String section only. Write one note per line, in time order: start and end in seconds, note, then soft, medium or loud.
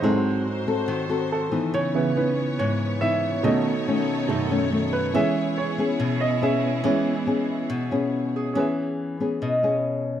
0.04 1.73 F#4 medium
0.04 1.73 C5 medium
1.74 5.12 B3 medium
1.74 3.43 C#4 medium
1.74 8.53 C#5 medium
3.45 5.14 D#4 medium
3.45 5.14 A4 medium
5.16 8.53 B3 medium
5.16 8.53 E4 medium
5.16 8.53 G#4 medium